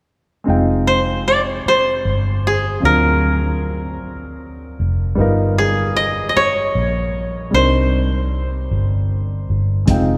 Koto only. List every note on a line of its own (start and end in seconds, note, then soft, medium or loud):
0.87 0.98 C5 medium
1.28 1.38 D5 medium
1.68 3.40 C5 medium
2.47 4.44 G#4 medium
2.85 4.69 A#4 medium
5.58 7.55 G#4 medium
5.96 6.29 D#5 medium
6.29 7.84 D#5 medium
6.37 7.60 C#5 medium
7.54 9.26 C5 medium